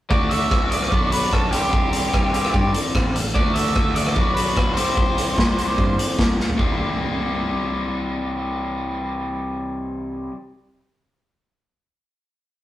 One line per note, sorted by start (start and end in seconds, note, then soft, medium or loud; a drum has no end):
0.09 0.49 D2 medium
0.09 0.90 D3 medium
0.09 0.91 A3 medium
0.09 0.93 D4 medium
0.09 0.92 F#4 medium
0.09 0.32 D5 medium
0.09 kick medium
0.29 0.72 E5 medium
0.29 closed hi-hat medium
0.51 0.89 C2 medium
0.51 kick loud
0.51 cross-stick medium
0.70 1.12 D5 medium
0.70 closed hi-hat medium
0.83 cross-stick medium
0.90 1.30 B1 medium
0.90 1.51 B2 medium
0.90 1.52 F#3 medium
0.90 1.52 B3 medium
0.90 1.54 D4 medium
0.90 1.53 F#4 medium
0.90 kick medium
1.12 1.31 B4 medium
1.12 closed hi-hat medium
1.33 1.52 B1 medium
1.33 1.51 A4 medium
1.33 kick medium
1.33 cross-stick medium
1.52 2.10 C2 medium
1.52 3.13 C3 medium
1.52 3.14 E3 medium
1.52 3.14 G3 medium
1.52 3.15 C4 medium
1.52 2.70 G4 medium
1.52 3.15 G4 medium
1.52 closed hi-hat medium
1.73 kick loud
1.93 closed hi-hat medium
2.14 2.52 C2 medium
2.14 kick medium
2.14 cross-stick medium
2.34 closed hi-hat medium
2.45 cross-stick medium
2.54 2.73 G2 medium
2.54 kick medium
2.74 closed hi-hat medium
2.95 3.33 A1 medium
2.95 kick medium
2.95 cross-stick medium
3.16 closed hi-hat medium
3.34 3.73 D2 medium
3.34 4.14 D3 medium
3.34 4.15 A3 medium
3.34 4.18 D4 medium
3.34 4.16 F#4 medium
3.34 3.56 D5 medium
3.34 kick medium
3.54 3.96 E5 medium
3.54 closed hi-hat medium
3.76 4.14 D2 medium
3.76 kick medium
3.76 cross-stick medium
3.95 4.34 D5 medium
3.95 closed hi-hat medium
4.07 cross-stick medium
4.16 4.54 B1 medium
4.16 4.74 B2 medium
4.16 4.76 F#3 medium
4.16 4.76 B3 medium
4.16 4.77 D4 medium
4.16 4.77 F#4 medium
4.16 kick medium
4.34 4.74 B4 medium
4.34 closed hi-hat medium
4.57 4.76 B1 medium
4.57 kick medium
4.57 cross-stick medium
4.74 5.34 C2 medium
4.74 6.36 C3 medium
4.74 6.37 E3 medium
4.74 6.38 G3 medium
4.74 6.38 E4 medium
4.74 6.13 C5 medium
4.74 closed hi-hat medium
4.78 6.38 G4 medium
4.97 kick loud
5.18 closed hi-hat medium
5.38 5.76 C2 medium
5.38 kick medium
5.38 snare medium
5.58 closed hi-hat medium
5.78 5.97 G2 medium
5.78 kick medium
5.99 closed hi-hat medium
6.19 6.57 C2 medium
6.19 kick medium
6.19 snare medium
6.40 snare soft
6.49 floor tom medium
6.57 10.29 C2 medium
6.57 10.31 C3 medium
6.57 10.31 E3 medium
6.57 10.33 G3 medium
6.57 10.34 C4 medium
6.57 10.34 E4 medium
6.57 kick medium